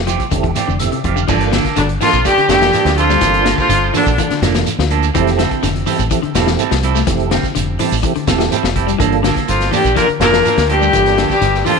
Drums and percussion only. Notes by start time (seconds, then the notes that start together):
0.07 closed hi-hat, shekere
0.20 kick, closed hi-hat, shekere
0.31 kick, closed hi-hat, shekere
0.43 kick, closed hi-hat
0.55 snare, closed hi-hat, shekere
0.70 shekere
0.79 closed hi-hat, shekere
0.92 closed hi-hat
1.04 kick, closed hi-hat, shekere
1.17 shekere
1.28 kick, crash, shekere
1.41 closed hi-hat
1.53 snare, closed hi-hat, shekere
1.64 kick, snare, closed hi-hat, shekere
1.76 closed hi-hat, shekere
1.89 closed hi-hat
2.01 open hi-hat, shekere
2.13 kick, closed hi-hat, shekere
2.25 kick, closed hi-hat, shekere
2.38 closed hi-hat
2.49 snare, closed hi-hat, shekere
2.61 snare, closed hi-hat, shekere
2.73 snare, closed hi-hat, shekere
2.86 snare, closed hi-hat
2.98 closed hi-hat, shekere
3.10 snare, shekere
3.21 kick, snare, closed hi-hat, shekere
3.34 closed hi-hat
3.46 snare, closed hi-hat, shekere
3.58 kick, shekere
3.70 closed hi-hat, shekere
3.94 open hi-hat, shekere
4.06 kick, shekere
4.18 kick, closed hi-hat, shekere
4.30 snare, closed hi-hat
4.43 snare, closed hi-hat, shekere
4.54 snare, closed hi-hat, shekere
4.66 closed hi-hat, shekere
4.79 snare
4.90 closed hi-hat, shekere
5.03 closed hi-hat, shekere
5.15 kick, closed hi-hat, shekere
5.27 snare, closed hi-hat
5.39 snare, closed hi-hat, shekere
5.51 kick, closed hi-hat, shekere
5.63 snare, closed hi-hat, shekere
5.75 closed hi-hat
5.87 open hi-hat, shekere
5.99 kick, closed hi-hat, shekere
6.11 kick, closed hi-hat, shekere
6.23 closed hi-hat
6.35 snare, closed hi-hat, shekere
6.47 snare, closed hi-hat, shekere
6.59 closed hi-hat, shekere
6.71 snare, closed hi-hat
6.83 closed hi-hat, shekere
6.96 snare, shekere
7.07 kick, snare, closed hi-hat, shekere
7.20 closed hi-hat
7.31 snare, closed hi-hat, shekere
7.43 kick, snare, shekere
7.55 closed hi-hat, shekere
7.79 open hi-hat, shekere
7.92 shekere
8.03 kick, closed hi-hat, shekere
8.15 closed hi-hat
8.27 kick, snare, closed hi-hat, shekere
8.40 snare, closed hi-hat, shekere
8.52 closed hi-hat, shekere
8.64 snare
8.76 kick, closed hi-hat, shekere
8.88 closed hi-hat, shekere
9.00 kick, closed hi-hat, shekere
9.12 closed hi-hat
9.24 snare, closed hi-hat, shekere
9.36 kick, snare, closed hi-hat, shekere
9.48 closed hi-hat, shekere
9.61 snare, closed hi-hat
9.72 open hi-hat, shekere
9.85 kick, closed hi-hat, shekere
9.96 kick, closed hi-hat, shekere
10.09 closed hi-hat
10.21 snare, closed hi-hat, shekere
10.33 snare, closed hi-hat, shekere
10.45 snare, closed hi-hat, shekere
10.57 snare, closed hi-hat
10.69 closed hi-hat, shekere
10.82 shekere
10.93 kick, closed hi-hat, shekere
11.06 snare, closed hi-hat
11.18 snare, closed hi-hat, shekere
11.30 kick, snare, shekere
11.42 snare, closed hi-hat, shekere
11.55 snare
11.66 open hi-hat, shekere